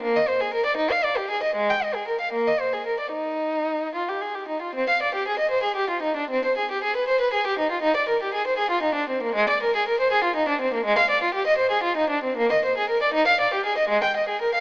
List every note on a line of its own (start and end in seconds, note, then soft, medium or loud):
0.02 0.15 A#3 medium
0.16 0.28 D#5 medium
0.28 0.40 C5 medium
0.41 0.53 G#4 soft
0.54 0.65 A#4 medium
0.66 0.77 D5 medium
0.77 0.89 D#4 medium
0.91 1.03 F5 medium
1.04 1.16 D5 medium
1.17 1.29 G4 soft
1.31 1.42 G#4 medium
1.43 1.55 D#5 soft
1.56 1.68 G#3 medium
1.70 1.82 G5 soft
1.83 1.95 D#5 soft
1.95 2.07 G#4 soft
2.08 2.20 A#4 soft
2.21 2.33 F5 soft
2.33 2.46 A#3 medium
2.47 2.60 D#5 soft
2.60 2.73 C5 soft
2.73 2.86 G#4 soft
2.86 2.99 A#4 soft
3.00 3.13 D5 soft
3.12 3.92 D#4 medium
3.95 4.07 F4 soft
4.08 4.21 G4 soft
4.21 4.35 G#4 soft
4.35 4.48 G4 soft
4.48 4.62 D#4 soft
4.62 4.75 F4 soft
4.75 4.88 C4 medium
4.89 5.01 F5 medium
5.02 5.14 D5 soft
5.15 5.26 G4 medium
5.28 5.39 G#4 medium
5.39 5.51 D#5 soft
5.51 5.64 C5 medium
5.63 5.76 G#4 soft
5.76 5.89 G4 medium
5.90 6.03 F4 soft
6.03 6.16 D#4 medium
6.17 6.30 D4 soft
6.30 6.43 C4 medium
6.45 6.57 C5 soft
6.57 6.69 G#4 soft
6.71 6.83 G4 soft
6.84 6.95 G#4 medium
6.97 7.08 B4 medium
7.08 7.20 C5 medium
7.21 7.33 B4 medium
7.33 7.45 G#4 medium
7.47 7.58 G4 medium
7.59 7.71 D#4 medium
7.71 7.83 F4 soft
7.82 7.95 D#4 medium
7.96 8.08 D5 medium
8.09 8.21 A#4 medium
8.23 8.34 G4 medium
8.34 8.46 G#4 medium
8.47 8.59 C5 medium
8.58 8.70 G#4 medium
8.71 8.83 F4 medium
8.83 8.96 D#4 medium
8.95 9.08 D4 medium
9.09 9.22 C4 medium
9.23 9.36 A#3 medium
9.35 9.48 G#3 medium
9.49 9.62 D5 medium
9.63 9.75 A#4 medium
9.76 9.87 G#4 medium
9.88 10.00 A#4 medium
10.00 10.12 C5 medium
10.12 10.24 G#4 medium
10.24 10.36 F4 medium
10.36 10.48 D#4 medium
10.48 10.60 D4 medium
10.61 10.73 C4 medium
10.74 10.85 A#3 medium
10.85 10.97 G#3 medium
10.98 11.10 F5 medium
11.10 11.22 D5 medium
11.23 11.35 F4 medium
11.34 11.46 G4 medium
11.47 11.59 D#5 medium
11.58 11.71 C5 medium
11.71 11.83 G#4 medium
11.83 11.96 F4 medium
11.97 12.10 D#4 medium
12.10 12.23 D4 medium
12.24 12.37 C4 medium
12.37 12.50 A#3 medium
12.52 12.64 D#5 soft
12.65 12.77 C5 soft
12.78 12.89 G#4 medium
12.89 13.01 A#4 medium
13.02 13.14 D5 medium
13.14 13.26 D#4 medium
13.27 13.39 F5 medium
13.40 13.52 D5 medium
13.54 13.65 G4 medium
13.66 13.77 G#4 medium
13.78 13.89 D#5 medium
13.89 14.01 G#3 medium
14.04 14.15 G5 soft
14.16 14.28 D#5 medium
14.28 14.41 G#4 medium
14.42 14.54 A#4 medium
14.54 14.60 F5 medium